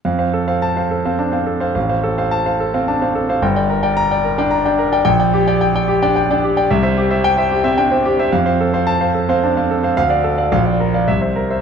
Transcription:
0.05 1.71 F2 medium
0.05 0.17 F5 soft
0.18 0.31 C5 soft
0.18 0.32 F5 medium
0.34 0.56 A4 soft
0.48 0.60 C5 soft
0.48 0.60 F5 medium
0.62 0.84 A5 medium
0.76 0.89 C5 soft
0.76 0.89 F5 soft
0.91 1.13 A4 soft
1.05 1.27 C4 soft
1.05 1.17 C5 medium
1.05 1.18 F5 soft
1.19 1.32 D4 soft
1.19 1.41 A5 medium
1.32 1.55 C4 soft
1.32 1.45 C5 soft
1.32 1.45 F5 soft
1.46 1.69 A4 soft
1.60 1.73 C5 soft
1.60 1.74 F5 medium
1.75 3.37 A1 medium
1.75 1.88 F5 soft
1.89 2.02 C5 soft
1.89 2.02 F5 medium
2.03 2.25 A4 medium
2.18 2.30 C5 soft
2.18 2.30 F5 medium
2.31 2.54 A5 medium
2.46 2.58 C5 soft
2.46 2.58 F5 medium
2.60 2.82 A4 soft
2.74 2.96 C4 medium
2.74 2.86 C5 soft
2.74 2.86 F5 medium
2.88 3.01 D4 soft
2.88 3.09 A5 medium
3.01 3.23 C4 soft
3.01 3.13 C5 soft
3.01 3.14 F5 medium
3.15 3.36 A4 medium
3.29 3.41 C5 medium
3.29 3.41 F5 medium
3.42 5.02 G1 medium
3.42 3.55 G5 medium
3.56 3.68 D5 medium
3.56 3.68 G5 medium
3.70 3.91 A#4 medium
3.83 3.95 D5 medium
3.83 3.95 G5 medium
3.97 4.19 A#5 medium
4.11 4.23 D5 medium
4.11 4.23 G5 medium
4.24 4.46 A#4 medium
4.38 4.59 D4 medium
4.38 4.50 D5 medium
4.38 4.50 G5 medium
4.51 4.73 A#5 medium
4.65 4.87 D4 medium
4.65 4.77 D5 medium
4.65 4.77 G5 medium
4.79 5.00 A#4 medium
4.92 5.04 D5 medium
4.92 5.03 G5 medium
5.05 6.66 A#1 medium
5.05 5.18 G5 medium
5.20 5.32 D5 medium
5.20 5.32 G5 medium
5.34 5.55 G4 medium
5.47 5.59 D5 medium
5.47 5.59 G5 medium
5.61 5.74 G5 medium
5.75 5.87 D5 medium
5.75 5.87 G5 medium
5.88 6.10 G4 medium
6.02 6.24 D4 medium
6.02 6.14 D5 medium
6.02 6.14 G5 medium
6.16 6.29 G5 medium
6.30 6.51 D4 medium
6.30 6.42 D5 medium
6.30 6.42 G5 medium
6.44 6.65 G4 medium
6.57 6.69 D5 medium
6.57 6.69 G5 medium
6.71 8.29 C2 medium
6.71 6.82 E5 medium
6.83 6.95 C5 medium
6.83 6.95 E5 medium
6.97 7.19 G4 medium
7.10 7.23 C5 medium
7.10 7.23 E5 medium
7.24 7.46 G5 medium
7.38 7.50 C5 medium
7.38 7.50 E5 medium
7.51 7.73 G4 medium
7.64 7.86 C4 medium
7.64 7.76 C5 medium
7.64 7.76 E5 medium
7.78 7.92 D4 medium
7.78 8.00 G5 medium
7.91 8.13 C4 medium
7.91 8.04 C5 medium
7.91 8.04 E5 medium
8.05 8.27 G4 medium
8.19 8.31 C5 medium
8.19 8.31 E5 medium
8.32 9.93 F2 medium
8.32 8.44 F5 medium
8.46 8.58 C5 medium
8.46 8.58 F5 medium
8.61 8.82 A4 medium
8.74 8.86 C5 medium
8.74 8.86 F5 medium
8.87 9.09 A5 medium
9.01 9.13 C5 medium
9.01 9.13 F5 medium
9.14 9.37 A4 soft
9.29 9.51 C4 medium
9.29 9.41 C5 medium
9.29 9.41 F5 medium
9.43 9.57 D4 soft
9.43 9.65 A5 medium
9.57 9.78 C4 soft
9.57 9.69 C5 soft
9.57 9.69 F5 medium
9.71 9.92 A4 medium
9.83 9.96 C5 medium
9.83 9.96 F5 medium
9.97 10.51 D2 medium
9.97 10.09 F5 medium
10.10 10.23 D5 medium
10.10 10.23 F5 medium
10.24 10.46 A4 medium
10.38 10.50 D5 medium
10.38 10.50 F5 medium
10.52 11.06 A#1 medium
10.52 10.64 F5 medium
10.66 10.78 D5 soft
10.66 10.78 F5 soft
10.80 11.02 A#4 medium
10.94 11.07 D5 soft
10.94 11.07 F5 medium
11.08 11.62 C2 medium
11.08 11.20 E5 medium
11.21 11.35 C5 soft
11.21 11.35 E5 soft
11.36 11.60 A#4 medium
11.50 11.62 C5 soft
11.50 11.62 E5 soft

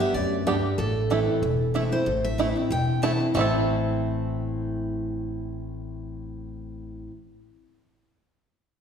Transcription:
0.00 0.12 G2 medium
0.00 0.15 B3 soft
0.00 0.14 G4 medium
0.00 0.14 E5 medium
0.14 0.61 D2 loud
0.14 0.45 F#2 medium
0.14 0.46 D5 loud
0.47 0.77 G2 medium
0.47 0.55 B3 medium
0.47 0.55 D4 medium
0.47 0.80 G4 medium
0.47 0.55 G4 medium
0.78 1.24 A1 medium
0.78 1.40 A2 medium
0.78 1.70 A4 medium
1.10 1.41 E3 medium
1.10 1.41 A3 medium
1.10 1.19 A3 medium
1.10 1.41 C4 loud
1.10 1.19 E4 medium
1.10 1.42 E4 medium
1.42 1.88 E1 medium
1.42 2.04 E2 medium
1.74 1.91 E3 medium
1.74 1.91 A3 medium
1.74 1.83 A3 medium
1.74 1.92 C4 medium
1.74 1.91 E4 medium
1.74 1.83 E4 medium
1.92 2.07 C4 soft
1.92 2.06 E4 medium
1.92 2.25 C5 medium
2.06 2.52 A1 medium
2.06 2.68 A2 medium
2.24 2.54 E5 medium
2.38 2.55 E3 medium
2.38 2.56 A3 medium
2.38 2.47 A3 medium
2.38 2.56 C4 medium
2.38 2.54 E4 loud
2.38 2.47 E4 medium
2.56 2.71 C4 medium
2.56 2.70 E4 medium
2.70 3.17 E1 medium
2.70 3.32 E2 medium
2.70 3.02 G5 loud
3.02 3.19 E3 medium
3.02 3.20 A3 medium
3.02 3.11 A3 medium
3.02 3.20 C4 medium
3.02 3.19 E4 medium
3.02 3.11 E4 medium
3.02 3.26 A5 loud
3.20 3.35 C4 soft
3.20 3.34 E4 medium
3.34 7.07 A1 loud
3.34 7.10 A2 medium
3.34 7.11 E3 medium
3.34 7.07 A3 medium
3.34 7.11 A3 medium
3.34 7.12 C4 loud
3.34 7.09 C4 medium
3.34 7.12 E4 medium
3.34 7.07 A5 medium
3.39 7.11 E4 medium
3.39 7.13 A4 medium

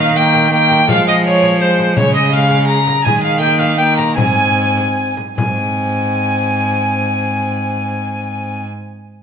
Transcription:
0.00 0.86 D#3 loud
0.00 0.15 A#3 medium
0.00 0.18 F5 loud
0.16 0.51 A#3 medium
0.16 0.53 G5 medium
0.16 0.52 G5 loud
0.35 frame drum soft
0.51 0.90 A#3 medium
0.51 0.88 G5 loud
0.71 frame drum medium
0.88 1.98 F3 medium
0.88 1.60 G#3 medium
0.88 1.06 F5 loud
0.88 1.07 F5 loud
0.88 frame drum medium
1.07 1.25 D#5 loud
1.07 1.15 D#5 medium
1.25 1.63 C#5 loud
1.25 1.60 C#5 loud
1.43 frame drum medium
1.60 1.96 G#3 medium
1.60 1.96 C5 medium
1.60 1.98 C5 loud
1.79 frame drum medium
1.97 3.06 C#3 medium
1.97 2.32 G#3 medium
1.97 2.14 C#5 loud
1.97 2.13 C#5 loud
1.97 frame drum medium
2.14 2.35 D#5 loud
2.14 2.31 D#5 loud
2.31 2.79 G#3 medium
2.31 2.67 F5 loud
2.31 2.67 F5 medium
2.51 frame drum medium
2.68 3.04 A#5 loud
2.68 3.07 A#5 loud
2.88 frame drum medium
3.05 4.19 D#3 medium
3.05 3.42 G#3 medium
3.05 3.23 G#5 medium
3.05 3.23 G#5 loud
3.05 frame drum medium
3.23 3.41 F5 loud
3.23 3.40 F5 loud
3.41 3.77 A#3 medium
3.41 3.59 G5 loud
3.41 3.61 G5 loud
3.59 3.77 F5 loud
3.59 3.80 F5 medium
3.59 frame drum soft
3.77 4.19 A#3 medium
3.77 3.96 G5 loud
3.77 3.99 G5 medium
3.97 4.14 A#5 loud
3.97 4.16 A#5 medium
3.97 frame drum medium
4.15 5.18 G#2 medium
4.15 5.18 C4 medium
4.15 5.14 G#5 loud
4.15 5.15 G#5 loud
4.15 frame drum medium
4.77 frame drum soft
5.17 frame drum medium
5.37 8.65 G#2 medium
5.37 8.64 C4 medium
5.37 8.65 G#5 medium
5.37 frame drum medium

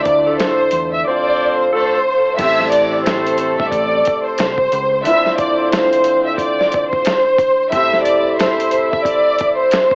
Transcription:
0.00 2.44 D3 medium
0.00 2.37 A3 medium
0.00 2.35 E4 medium
0.00 2.36 F4 medium
0.00 2.40 C5 medium
0.00 0.35 D5 medium
0.05 0.36 D2 medium
0.05 kick medium
0.05 closed hi-hat medium
0.26 0.70 A3 medium
0.26 0.70 D4 medium
0.26 0.70 F4 medium
0.26 0.70 A4 loud
0.40 0.89 C5 medium
0.40 snare loud
0.40 closed hi-hat medium
0.71 1.02 E2 medium
0.71 closed hi-hat medium
0.94 1.05 E5 medium
1.07 1.69 C4 loud
1.07 1.69 F4 loud
1.07 1.69 A4 loud
1.07 1.69 C5 loud
1.07 1.56 D5 medium
1.57 2.34 C5 medium
1.73 1.99 A3 loud
1.73 1.99 D4 medium
1.73 1.99 F4 medium
1.73 1.99 A4 loud
2.36 3.55 A1 loud
2.36 5.11 A2 medium
2.36 5.05 A3 medium
2.36 4.68 A3 medium
2.36 4.68 C4 medium
2.36 5.16 C4 medium
2.36 4.68 E4 medium
2.36 4.68 A4 loud
2.36 2.69 E5 loud
2.36 kick loud
2.36 closed hi-hat loud
2.36 crash loud
2.41 5.03 G4 medium
2.41 5.04 C5 medium
2.60 snare soft
2.71 3.02 D5 medium
2.71 closed hi-hat medium
3.05 3.56 C5 medium
3.05 finger snap medium
3.05 snare loud
3.05 closed hi-hat medium
3.26 closed hi-hat medium
3.38 closed hi-hat medium
3.59 3.71 G1 medium
3.59 3.71 E5 medium
3.59 kick loud
3.70 4.02 A1 loud
3.70 4.21 D5 medium
3.70 kick medium
3.70 closed hi-hat medium
4.05 kick medium
4.05 closed hi-hat medium
4.27 5.02 C5 medium
4.38 4.69 C2 loud
4.38 finger snap medium
4.38 snare loud
4.38 closed hi-hat loud
4.58 kick loud
4.72 5.02 C#2 loud
4.72 closed hi-hat medium
5.03 7.77 D3 medium
5.03 7.71 A3 medium
5.03 7.35 C4 medium
5.03 7.69 E4 medium
5.03 7.35 F4 medium
5.03 7.35 A4 medium
5.03 7.35 C5 loud
5.03 5.35 E5 loud
5.03 closed hi-hat loud
5.08 7.70 F4 medium
5.08 5.15 B4 medium
5.16 7.74 C5 medium
5.27 snare soft
5.39 5.69 D5 medium
5.39 kick medium
5.39 closed hi-hat medium
5.73 6.23 C5 medium
5.73 finger snap medium
5.73 snare loud
5.73 closed hi-hat medium
5.93 closed hi-hat medium
6.04 closed hi-hat medium
6.27 6.38 E5 medium
6.38 6.89 D5 medium
6.38 kick medium
6.38 closed hi-hat loud
6.61 snare soft
6.72 kick medium
6.72 closed hi-hat medium
6.91 7.67 C5 medium
6.91 kick loud
7.05 finger snap medium
7.05 snare loud
7.05 closed hi-hat loud
7.38 kick medium
7.38 closed hi-hat medium
7.70 9.95 A2 medium
7.70 9.95 A3 medium
7.70 9.95 C4 medium
7.70 9.95 E4 medium
7.70 9.95 A4 medium
7.70 9.95 C5 medium
7.70 9.95 E5 loud
7.70 8.02 E5 loud
7.70 kick loud
7.70 closed hi-hat loud
7.75 9.95 G4 medium
7.75 9.95 C5 medium
7.93 snare soft
8.04 8.35 D5 medium
8.04 closed hi-hat medium
8.38 8.89 C5 medium
8.38 finger snap medium
8.38 snare loud
8.38 closed hi-hat medium
8.60 closed hi-hat medium
8.71 closed hi-hat medium
8.92 9.04 E5 medium
8.92 kick loud
9.05 9.55 D5 medium
9.05 kick medium
9.05 closed hi-hat medium
9.38 kick medium
9.38 closed hi-hat medium
9.58 9.95 C5 medium
9.71 finger snap medium
9.71 snare loud
9.71 closed hi-hat loud
9.91 kick loud

